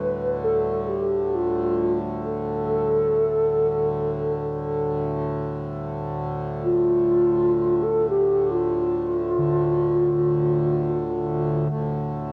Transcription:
Already playing: D2 A2 G3 B4
0.44 A4
0.88 G4
1.34 F4
2.24 A4
6.64 F4
7.82 A4
8.09 G4
8.51 F4
9.38 D3
11.69 D2 A2

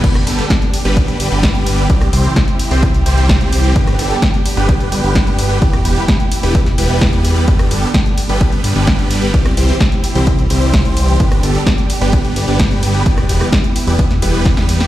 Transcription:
Already playing: B3 G4
0.04 G1 D3 G3 B3 D4 G4 B4, kick, closed hi-hat, crash, ride
0.15 cross-stick, closed hi-hat
0.27 G1 D3 G3 B3 G4 A4, open hi-hat, ride
0.39 closed hi-hat
0.50 kick, snare, closed hi-hat, ride
0.62 closed hi-hat
0.74 open hi-hat, ride
0.85 G1 D3 G3 B3 G4 B4, closed hi-hat
0.97 kick, closed hi-hat, ride
1.08 closed hi-hat
1.20 G1 D3 G3 B3 G4 B4, open hi-hat, ride
1.32 G1 D3 G3 B3 G4 B4, closed hi-hat
1.43 kick, snare, closed hi-hat, ride
1.55 closed hi-hat
1.67 open hi-hat, ride
1.78 closed hi-hat
1.90 C2 E3 G3 C4 E4 G4 D5, kick, closed hi-hat, ride
2.01 cross-stick, closed hi-hat
2.13 C2 E3 G3 C4 G4 C5, open hi-hat, ride
2.25 closed hi-hat
2.36 kick, snare, closed hi-hat, ride
2.48 closed hi-hat
2.59 open hi-hat, ride
2.71 C2 E3 G3 C4 G4 C5, open hi-hat
2.83 kick, closed hi-hat, ride
2.94 closed hi-hat
3.06 C2 E3 G3 C4 G4 C5, open hi-hat, ride
3.18 closed hi-hat
3.29 kick, snare, closed hi-hat, ride
3.41 C2 E3 G3 C4 G4 C5, closed hi-hat
3.53 open hi-hat, ride
3.64 closed hi-hat
3.76 G1 D3 G3 B3 D4 G4 B4, kick, closed hi-hat, ride
3.87 cross-stick, closed hi-hat
3.99 G1 D3 G3 B3 G4 A4, open hi-hat, ride
4.11 closed hi-hat
4.22 kick, snare, closed hi-hat, ride
4.34 closed hi-hat
4.46 open hi-hat, ride
4.57 G1 D3 G3 B3 G4 B4, closed hi-hat
4.69 kick, closed hi-hat, ride
4.80 closed hi-hat
4.92 G1 D3 G3 B3 G4 B4, open hi-hat, ride
5.04 G1 D3 G3 B3 G4 B4, closed hi-hat
5.15 kick, snare, closed hi-hat, ride
5.27 closed hi-hat
5.39 open hi-hat, ride
5.50 closed hi-hat
5.62 E1 E3 G3 B3 E4 G4 D5, kick, closed hi-hat, ride
5.73 cross-stick, closed hi-hat
5.85 E1 E3 G3 B3 G4 B4, open hi-hat, ride
5.97 closed hi-hat
6.08 kick, snare, closed hi-hat, ride
6.20 closed hi-hat
6.32 open hi-hat, ride
6.43 E1 E3 G3 B3 G4 B4, open hi-hat
6.55 kick, closed hi-hat, ride
6.66 snare, closed hi-hat
6.78 E1 E3 G3 B3 G4 B4, open hi-hat, ride
6.90 closed hi-hat
7.01 kick, snare, closed hi-hat, ride
7.13 E2 E3 G3 B3 G4 B4, closed hi-hat
7.25 open hi-hat, ride
7.36 closed hi-hat
7.48 G1 D3 G3 B3 D4 G4 B4, kick, closed hi-hat, ride
7.59 cross-stick, closed hi-hat
7.71 G1 D3 G3 B3 G4 A4, open hi-hat, ride
7.83 closed hi-hat
7.94 kick, snare, closed hi-hat, ride
8.06 closed hi-hat
8.18 open hi-hat, ride
8.29 G1 D3 G3 B3 G4 B4, closed hi-hat
8.41 kick, closed hi-hat, ride
8.52 closed hi-hat
8.64 G1 D3 G3 B3 G4 B4, open hi-hat, ride
8.76 G1 D3 G3 B3 G4 B4, closed hi-hat
8.87 kick, snare, closed hi-hat, ride
8.99 closed hi-hat
9.11 open hi-hat, ride
9.22 closed hi-hat
9.34 C2 E3 C4 E4 G4, kick, closed hi-hat, ride
9.46 cross-stick, closed hi-hat
9.57 C2 E3 G3 C4 G4 C5, open hi-hat, ride
9.69 closed hi-hat
9.80 kick, snare, closed hi-hat, ride
9.92 closed hi-hat
10.04 open hi-hat, ride
10.15 C2 E3 G3 C4 G4 C5, open hi-hat
10.27 kick, closed hi-hat, ride
10.39 closed hi-hat
10.50 C2 E3 G3 C4 G4 C5, open hi-hat, ride
10.62 closed hi-hat
10.74 kick, snare, closed hi-hat, ride
10.85 C2 E3 G3 C4 G4 C5, closed hi-hat
10.97 open hi-hat, ride
11.08 closed hi-hat
11.20 G1 D3 G3 B3 D4 G4 B4, kick, closed hi-hat, ride
11.32 cross-stick, closed hi-hat
11.43 G1 D3 G3 B3 G4 A4, open hi-hat, ride
11.55 closed hi-hat
11.67 kick, snare, closed hi-hat, ride
11.78 closed hi-hat
11.90 open hi-hat, ride
12.01 G1 D3 G3 B3 G4 B4, closed hi-hat
12.13 kick, closed hi-hat, ride
12.25 closed hi-hat
12.36 G1 D3 G3 B3 G4 B4, open hi-hat, ride
12.48 G1 D3 G3 B3 G4 B4, closed hi-hat
12.59 kick, snare, closed hi-hat, ride
12.71 closed hi-hat
12.83 open hi-hat, ride
12.94 closed hi-hat
13.06 E1 E3 G3 B3 E4 G4, kick, closed hi-hat, ride
13.18 cross-stick, closed hi-hat
13.29 E1 E3 G3 B3 G4 B4, open hi-hat, ride
13.41 cross-stick, closed hi-hat
13.53 kick, snare, closed hi-hat, ride
13.64 closed hi-hat
13.76 open hi-hat, ride
13.87 E1 E3 G3 B3 G4 B4, open hi-hat
13.99 kick, closed hi-hat, ride
14.11 snare, closed hi-hat
14.22 E1 E3 G3 B3 G4 B4, open hi-hat, ride
14.34 closed hi-hat
14.46 kick, snare, closed hi-hat, ride
14.57 E2 E3 G3 B3 G4 B4, snare, closed hi-hat
14.69 open hi-hat, ride
14.80 snare, closed hi-hat

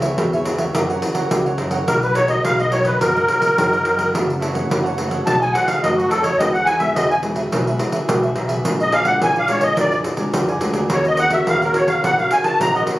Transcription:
Already playing: C#2 C#3
0.01 B3 E4 G#4 B4 C#5 E5, pandeiro
0.18 E2 G#2 E4 B4 C#5 E5, pandeiro
0.33 B3 E4 G#4 B4 C#5 E5, pandeiro
0.45 B3 E4 G#4, pandeiro
0.58 B4 C#5 E5, pandeiro
0.75 F#2 E3 A#3 C#4 E4 A#4 C#5 F#5, pandeiro
0.89 E3 A#3 C#4 A#4 C#5 F#5, pandeiro
1.01 muted cavaquinho stroke, pandeiro
1.14 A#4 C#5 F#5, pandeiro
1.31 C#2 C#3 E3 A#3 C#4, pandeiro
1.46 A#4 C#5 F#5, pandeiro
1.58 F#2 E4 A#4 C#5 F#5, pandeiro
1.71 A#4 C#5 F#5, pandeiro
1.87 B1 B2 F#3 A#3 D#4 A#4 B4 D#5, pandeiro
2.03 B4, muted cavaquinho stroke, pandeiro
2.14 D#4 A#4 B4 C#5 D#5, pandeiro
2.27 F#3 A#3 D#4 A#4 B4 D#5, pandeiro
2.44 B1 F#2 D#4 A#4 B4 D#5 F5, pandeiro
2.58 F#3 A#3 D#4 A#4 B4 D#5, pandeiro
2.72 F#3 A#3 D#4 C#5, pandeiro
2.84 A#4 B4 D#5, pandeiro
3.00 F#2 B2 D#4 A#4 B4 D#5, pandeiro
3.15 F#3 A#3 D#4 A#4 B4 D#5, pandeiro
3.28 muted cavaquinho stroke, pandeiro
3.40 A#4 B4 D#5, pandeiro
3.57 F#2 F#3 A#3 D#4, pandeiro
3.71 A#4 B4 D#5, pandeiro
3.83 F#2 D#4 A#4 B4 D#5, pandeiro
3.97 A#4 B4 D#5, pandeiro
4.12 F#1 F#2 E3 A3 C#4 E4 A4 C#5 F#5, pandeiro
4.29 muted cavaquinho stroke, pandeiro
4.40 E4 A4 C#5 F#5, pandeiro
4.53 E3 A3 C#4 A4 C#5 F#5, pandeiro
4.70 F#1 C#3 E4 A4 C#5 F#5, pandeiro
4.83 A4 C#5 F#5, pandeiro
4.97 E3 A3 C#4, pandeiro
5.09 A4 C#5 F#5, pandeiro
5.26 B1 B2 F#3 A3 D#4 A4 B4 D#5 A5, pandeiro
5.40 F#3 A3 D#4 A4 B4 D#5 G#5, pandeiro
5.53 F#5, muted cavaquinho stroke, pandeiro
5.66 A4 B4 D#5 F5, pandeiro
5.82 F#2 F#3 A3 D#4 D#5, pandeiro
5.96 F#4 A4 B4 D#5, pandeiro
6.09 F2 D#4 A4 B4 D#5, pandeiro
6.23 A4 B4 C#5 D#5, pandeiro
6.38 E2 E3 G#3 B3 D#4 G#4 D#5 E5, pandeiro
6.53 F#5, muted cavaquinho stroke, pandeiro
6.65 D#4 G#4 B4 E5 G#5, pandeiro
6.79 G#3 B3 D#4 G#4 B4 E5, pandeiro
6.95 E2 B2 D#4 G#4 B4 D#5 E5, pandeiro
7.10 G#4 B4 E5 G#5, pandeiro
7.23 G#3 B3 D#4, pandeiro
7.36 G#4 B4 E5, pandeiro
7.52 B1 E3 G#3 B3 D#4 G#4 B4 E5, pandeiro
7.67 G#3 B3 D#4 G#4 B4 E5, pandeiro
7.79 muted cavaquinho stroke, pandeiro
7.92 G#4 B4 E5, pandeiro
8.09 B1 B2 G#3 B3 D#4, pandeiro
8.23 G#4 B4 E5, pandeiro
8.35 B1 D#4 G#4 B4 E5, pandeiro
8.48 G#4 B4 E5, pandeiro
8.65 A#1 A#2 G#3 D4 F4 A#4 D5 G#5, pandeiro
8.79 D#5, muted cavaquinho stroke, pandeiro
8.91 D4 A#4 D5 F5 G#5, pandeiro
9.04 G#3 D4 F4 A#4 D5 F#5 G#5, pandeiro
9.21 A#1 F3 D4 A#4 D5 G#5, pandeiro
9.36 A#4 D5 F5 G#5, pandeiro
9.48 G#3 D4 F4 C#5, pandeiro
9.61 A#4 D5 D#5 G#5, pandeiro
9.77 F2 A#2 G#3 D4 F4 A#4 D5 G#5, pandeiro
9.92 A#4 D5 G#5, pandeiro
10.04 muted cavaquinho stroke, pandeiro
10.17 G#3 D4 F4 A#4 D5 G#5, pandeiro
10.34 F2 F3, pandeiro
10.49 A#4 D5 G#5, pandeiro
10.61 D2 G#3 D4 F4 A#4 D5 G#5, pandeiro
10.74 A#4 D5 G#5, pandeiro
10.90 D#2 D#3 C#4 D#4 F#4 A#4 C#5 F#5, pandeiro
11.05 D#5, muted cavaquinho stroke, pandeiro
11.17 D#4 A#4 C#5 F#5, pandeiro
11.30 C#4 F#4 A#4 C#5 E5 F#5, pandeiro
11.46 D#2 A#2 D#4 A#4 C#5 F5 F#5, pandeiro
11.62 C#4 F#4 A#4 C#5 F#5, pandeiro
11.74 C#4 F#4 A#4 C#5, pandeiro
11.86 A#4 C#5 F5 F#5, pandeiro
12.03 A#1 D#4 A#4 C#5 F#5, pandeiro
12.17 C#4 F#4 A#4 C#5 F5 F#5, pandeiro
12.30 G#5, muted cavaquinho stroke, pandeiro
12.42 A#4 C#5 F#5 A5, pandeiro
12.60 A#1 A#2 C#4 F#4 A#4 A#5, pandeiro
12.74 A#4 C#5 D#5 F#5, pandeiro
12.86 A#1 D#4 A#4 C#5 F#5, pandeiro

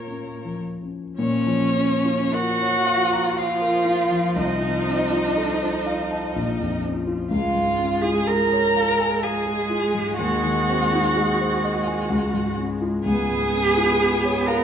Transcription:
Already playing: A#2 C#4 F4 A#4 C#5
0.07 C#4
0.45 F3
0.82 C#4
1.18 A#2 F3 C#4 C#5
1.46 F3
1.75 C#4
2.05 F4
2.33 F#4 A#4 F#5
2.61 C#5
2.87 F5
3.13 A#5
3.37 F4 F5
3.61 A#4
3.85 F4
4.11 F3
4.36 C2 D#4 D#5
4.61 C3
4.86 C4
5.12 F4
5.37 A4
5.62 C5
5.86 F5
6.11 A5
6.36 A#1
6.60 F2
6.83 C#4
7.07 F4
7.30 C#2 G#3 F4 F5
7.55 G#2
7.79 C#4
8.02 F4 G#4 G#5
8.27 G#4 A#4 A#5
8.53 C#5
8.77 F5
9.00 G#5
9.22 G#4 F5 G#5
9.46 G#4
9.70 F4
9.94 G#2
10.16 D#2 F#4 F#5
10.44 D#3
10.68 C4
10.93 D#4
11.17 G#4
11.41 C5
11.64 D#5
11.87 G#5
12.10 C#2
12.34 G#2
12.58 C#4
12.81 F4
13.05 C#2 B3 G#4 G#5
13.30 G#2
13.53 C#4
13.77 F4
14.01 G#4
14.24 C#5
14.47 A#4 F5 A#5

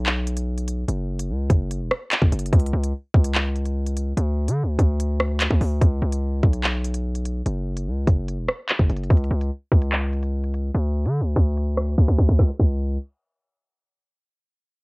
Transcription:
Already playing: B1
0.06 clap
0.27 closed hi-hat
0.37 closed hi-hat
0.58 closed hi-hat
0.68 closed hi-hat
0.88 F#1, closed hi-hat
1.19 closed hi-hat
1.29 C#2
1.50 F#1, kick, closed hi-hat
1.71 closed hi-hat
1.81 E1
1.91 cross-stick
2.12 clap, closed hi-hat
2.22 F#1, kick
2.32 F#1, closed hi-hat, open hi-hat
2.39 closed hi-hat
2.46 closed hi-hat
2.53 C#2, kick, closed hi-hat
2.60 closed hi-hat
2.66 closed hi-hat
2.73 C#2
2.84 closed hi-hat
3.14 C#2, kick
3.25 closed hi-hat
3.35 clap
3.56 closed hi-hat
3.66 closed hi-hat
3.86 closed hi-hat
3.97 closed hi-hat
4.17 D2, closed hi-hat
4.48 D3, closed hi-hat
4.63 D2
4.79 D2, kick, closed hi-hat
5.00 closed hi-hat
5.20 cross-stick
5.40 clap, closed hi-hat
5.51 D2, kick
5.61 D2, open hi-hat
5.81 C#2, kick, closed hi-hat
6.02 C#2
6.12 closed hi-hat
6.43 B1, kick
6.53 closed hi-hat
6.64 clap
6.84 closed hi-hat
6.94 closed hi-hat
7.15 closed hi-hat
7.25 closed hi-hat
7.46 F#1, closed hi-hat
7.77 closed hi-hat
7.87 C#2
8.07 F#1, kick, closed hi-hat
8.28 closed hi-hat
8.38 E1
8.49 cross-stick
8.69 clap, closed hi-hat
8.79 F#1, kick
8.90 F#1, closed hi-hat, open hi-hat
8.97 closed hi-hat
9.03 closed hi-hat
9.10 C#2, kick, closed hi-hat
9.17 closed hi-hat
9.24 closed hi-hat
9.31 C#2
9.41 closed hi-hat
9.72 C#2, kick
9.82 closed hi-hat
9.92 clap
10.13 closed hi-hat
10.23 closed hi-hat
10.44 closed hi-hat
10.54 closed hi-hat
10.74 D2, closed hi-hat
11.05 D3, closed hi-hat
11.21 D2
11.36 D2, kick, closed hi-hat
11.57 closed hi-hat
11.77 cross-stick
11.98 D2, kick, closed hi-hat
12.08 D2, kick
12.18 D2, kick
12.29 D2, kick
12.39 C#2, kick, snare
12.60 C#2, kick, crash

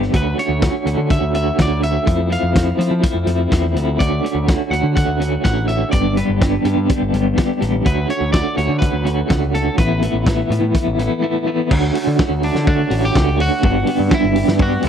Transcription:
Already playing: G2 D3 G3 B3 D4 G4
0.03 snare
0.13 D2 D3 A3 C#4 F#4 B4, kick, closed hi-hat
0.38 D3 A3 C#4 F#4 C#5, closed hi-hat
0.49 D2
0.62 D3 A3 C#4 F#4, kick, snare, closed hi-hat
0.85 D2 D3 A3 C#4 F#4, closed hi-hat
0.97 D3
1.09 D3 A3 C#4 F#4 E5, kick, closed hi-hat
1.21 D2
1.34 D3 A3 C#4 F#4 E5, closed hi-hat
1.58 D2 D3 A3 C#4 F#4 D5, kick, snare, closed hi-hat
1.83 D3 A3 C#4 F#4 E5, closed hi-hat
2.06 F2 F3 A3 C4 E4, kick, closed hi-hat
2.29 F3 A3 C4 E4 F5, closed hi-hat
2.43 F2
2.54 F3 A3 C4 E4, kick, snare, closed hi-hat
2.78 F3 A3 C4 E4, closed hi-hat
2.91 F3
3.02 F3 A3 C4 E4, kick, closed hi-hat
3.14 F2
3.26 F2 F3 A3 C4 E4, closed hi-hat
3.51 E2 F3 A3 C4 E4, kick, snare, closed hi-hat
3.75 D2 F3 A3 C4 E4, closed hi-hat
3.99 D2 D3 A3 C#4 F#4 D5, kick, closed hi-hat
4.23 D3 A3 C#4 F#4, closed hi-hat
4.35 D2
4.47 D3 A3 C#4 F#4, kick, snare, closed hi-hat
4.71 D2 D3 A3 C#4 F#4 F#5, closed hi-hat
4.83 D3
4.96 D3 A3 C#4 F#4 F#5, kick, closed hi-hat
5.08 D2
5.19 D3 A3 C#4 F#4, closed hi-hat
5.44 A1 D3 A3 C#4 F#4 F#5, kick, snare, closed hi-hat
5.68 D3 A3 C#4 F#4 E5, closed hi-hat
5.91 G1 G2 D3 G3 B3 D4 G4 D5, kick, closed hi-hat
6.16 G2 D3 G3 B3 D4 G4 B4, closed hi-hat
6.29 G1
6.40 G2 D3 G3 B3 D4 G4, kick, snare, closed hi-hat
6.64 G2 D3 G3 B3 D4 G4, closed hi-hat
6.77 G2
6.89 G2 D3 G3 B3 D4 G4, kick, closed hi-hat
7.01 G1
7.13 G1 G2 D3 G3 B3 D4 G4, closed hi-hat
7.36 G2 D3 G3 B3 D4 G4, kick, snare, closed hi-hat
7.60 A1 G2 D3 G3 B3 D4 G4, snare, closed hi-hat
7.84 D2 D3 A3 C#4 F#4 B4, kick, closed hi-hat
8.08 D3 A3 C#4 F#4 C#5, closed hi-hat
8.21 D2
8.32 D3 A3 C#4 F#4 D5, kick, snare, closed hi-hat
8.56 D2 D3 A3 C#4 F#4 C#5, closed hi-hat
8.69 D3
8.79 D3 A3 C#4 F#4 B4, kick, closed hi-hat
8.93 D2
9.04 D3 A3 C#4 F#4, closed hi-hat
9.28 C#2 D3 A3 C#4 F#4, kick, snare, closed hi-hat
9.54 D3 A3 C#4 F#4 A4, closed hi-hat
9.77 A1 A2 E3 A3 B3 E4 B4, kick, closed hi-hat
10.02 A2 E3 A3 B3 E4, closed hi-hat
10.14 A1
10.26 A2 E3 A3 B3 E4, kick, snare, closed hi-hat
10.50 A2 E3 A3 B3 E4, closed hi-hat
10.61 A2
10.75 A2 E3 A3 B3 E4, kick, closed hi-hat
10.87 A1
10.97 A1 A2 E3 A3 B3 E4, closed hi-hat
11.22 A2 E3 A3 B3 E4
11.46 A2 E3 A3 B3 E4
11.69 D2 D3 A3 C#4 F#4, kick, crash
11.94 A3 C#4 F#4, open hi-hat
12.07 D3
12.19 D3 A3 C#4 F#4, kick, snare
12.30 D2
12.43 A3 C#4 D4 F#4, open hi-hat
12.55 D3, snare
12.67 D3 A3 C#4 D4 F#4, kick
12.90 A1 D3 A3 C#4 F#4, open hi-hat
13.05 G4
13.14 C#2 D3 A3 C#4 F#4, kick, snare
13.37 D2 A3 C#4 F#4, open hi-hat
13.62 G1 G2 D3 G3 B3 D4 G4, kick
13.86 G3 B3 D4 G4, open hi-hat
13.99 G2
14.09 G2 D3 G3 B3 D4 G4, kick, snare
14.14 E4
14.24 G1
14.35 G3 B3 D4 G4, open hi-hat
14.48 G2, snare
14.59 G3 B3 D4 F#4 G4, kick
14.83 D2 G2 D3 G3 B3 D4 G4, open hi-hat

